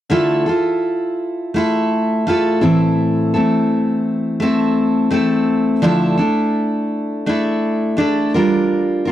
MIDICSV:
0, 0, Header, 1, 2, 480
1, 0, Start_track
1, 0, Key_signature, -1, "minor"
1, 0, Tempo, 716846
1, 68, Time_signature, 4, 2, 24, 8
1, 6105, End_track
2, 0, Start_track
2, 0, Title_t, "Steel-string acoustic guitar"
2, 0, Program_c, 0, 25
2, 64, Note_on_c, 0, 50, 64
2, 69, Note_on_c, 0, 57, 61
2, 75, Note_on_c, 0, 64, 66
2, 76, Note_on_c, 0, 65, 60
2, 79, Note_on_c, 0, 69, 69
2, 300, Note_off_c, 0, 69, 0
2, 306, Note_off_c, 0, 50, 0
2, 308, Note_on_c, 0, 69, 41
2, 309, Note_off_c, 0, 57, 0
2, 312, Note_off_c, 0, 64, 0
2, 312, Note_off_c, 0, 65, 0
2, 319, Note_on_c, 0, 64, 37
2, 328, Note_on_c, 0, 65, 34
2, 1032, Note_on_c, 0, 57, 47
2, 1035, Note_off_c, 0, 65, 0
2, 1044, Note_off_c, 0, 64, 0
2, 1044, Note_on_c, 0, 65, 55
2, 1047, Note_on_c, 0, 64, 54
2, 1054, Note_off_c, 0, 69, 0
2, 1057, Note_on_c, 0, 69, 59
2, 1516, Note_off_c, 0, 57, 0
2, 1516, Note_off_c, 0, 65, 0
2, 1519, Note_on_c, 0, 57, 57
2, 1526, Note_on_c, 0, 65, 54
2, 1531, Note_off_c, 0, 64, 0
2, 1533, Note_on_c, 0, 64, 57
2, 1537, Note_off_c, 0, 69, 0
2, 1540, Note_on_c, 0, 69, 60
2, 1741, Note_off_c, 0, 69, 0
2, 1746, Note_off_c, 0, 64, 0
2, 1750, Note_on_c, 0, 69, 50
2, 1754, Note_off_c, 0, 57, 0
2, 1754, Note_on_c, 0, 64, 45
2, 1757, Note_off_c, 0, 65, 0
2, 1760, Note_on_c, 0, 52, 37
2, 1760, Note_on_c, 0, 60, 46
2, 1761, Note_on_c, 0, 57, 42
2, 1766, Note_on_c, 0, 45, 43
2, 2232, Note_off_c, 0, 69, 0
2, 2234, Note_off_c, 0, 60, 0
2, 2235, Note_on_c, 0, 69, 42
2, 2237, Note_off_c, 0, 45, 0
2, 2239, Note_off_c, 0, 64, 0
2, 2242, Note_on_c, 0, 64, 39
2, 2249, Note_on_c, 0, 60, 41
2, 2253, Note_off_c, 0, 57, 0
2, 2255, Note_on_c, 0, 57, 32
2, 2943, Note_off_c, 0, 57, 0
2, 2946, Note_on_c, 0, 57, 51
2, 2952, Note_off_c, 0, 60, 0
2, 2960, Note_on_c, 0, 60, 59
2, 2961, Note_off_c, 0, 64, 0
2, 2964, Note_on_c, 0, 64, 54
2, 2965, Note_off_c, 0, 69, 0
2, 2967, Note_on_c, 0, 69, 57
2, 3416, Note_off_c, 0, 57, 0
2, 3416, Note_off_c, 0, 60, 0
2, 3419, Note_on_c, 0, 57, 51
2, 3424, Note_on_c, 0, 60, 56
2, 3425, Note_off_c, 0, 64, 0
2, 3428, Note_on_c, 0, 64, 54
2, 3436, Note_off_c, 0, 69, 0
2, 3439, Note_on_c, 0, 69, 60
2, 3896, Note_on_c, 0, 50, 68
2, 3898, Note_off_c, 0, 52, 0
2, 3900, Note_on_c, 0, 53, 63
2, 3902, Note_off_c, 0, 57, 0
2, 3904, Note_off_c, 0, 60, 0
2, 3905, Note_on_c, 0, 57, 65
2, 3906, Note_off_c, 0, 64, 0
2, 3907, Note_on_c, 0, 62, 68
2, 3908, Note_on_c, 0, 64, 76
2, 3909, Note_off_c, 0, 69, 0
2, 3912, Note_on_c, 0, 69, 77
2, 4127, Note_off_c, 0, 69, 0
2, 4135, Note_on_c, 0, 69, 42
2, 4136, Note_off_c, 0, 64, 0
2, 4139, Note_off_c, 0, 62, 0
2, 4142, Note_off_c, 0, 50, 0
2, 4144, Note_off_c, 0, 53, 0
2, 4144, Note_on_c, 0, 64, 38
2, 4146, Note_off_c, 0, 57, 0
2, 4147, Note_on_c, 0, 62, 36
2, 4156, Note_on_c, 0, 57, 35
2, 4856, Note_off_c, 0, 57, 0
2, 4861, Note_off_c, 0, 69, 0
2, 4864, Note_on_c, 0, 57, 50
2, 4865, Note_off_c, 0, 62, 0
2, 4866, Note_off_c, 0, 64, 0
2, 4868, Note_on_c, 0, 62, 59
2, 4882, Note_on_c, 0, 64, 50
2, 4884, Note_on_c, 0, 69, 58
2, 5327, Note_off_c, 0, 57, 0
2, 5335, Note_on_c, 0, 57, 52
2, 5340, Note_off_c, 0, 62, 0
2, 5340, Note_off_c, 0, 64, 0
2, 5342, Note_on_c, 0, 62, 60
2, 5348, Note_on_c, 0, 64, 60
2, 5350, Note_off_c, 0, 69, 0
2, 5358, Note_on_c, 0, 69, 61
2, 5581, Note_off_c, 0, 57, 0
2, 5584, Note_off_c, 0, 69, 0
2, 5585, Note_off_c, 0, 62, 0
2, 5587, Note_off_c, 0, 64, 0
2, 5587, Note_on_c, 0, 70, 51
2, 5594, Note_on_c, 0, 65, 46
2, 5598, Note_on_c, 0, 62, 45
2, 5602, Note_on_c, 0, 55, 41
2, 6054, Note_off_c, 0, 70, 0
2, 6062, Note_on_c, 0, 70, 41
2, 6072, Note_off_c, 0, 65, 0
2, 6074, Note_off_c, 0, 55, 0
2, 6075, Note_on_c, 0, 65, 38
2, 6086, Note_off_c, 0, 62, 0
2, 6105, Note_off_c, 0, 65, 0
2, 6105, Note_off_c, 0, 70, 0
2, 6105, End_track
0, 0, End_of_file